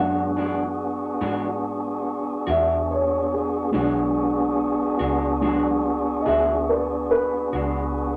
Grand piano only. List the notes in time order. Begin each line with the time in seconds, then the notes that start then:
Already playing: F#3 G#3 D4 F#5
2.49 E5
2.91 C#5
3.33 G#4
3.71 F#3 G#3 D4
5.41 F#3 G#3 D4
6.22 D#5
6.26 G#4 E5
6.69 B4 D5
7.11 B4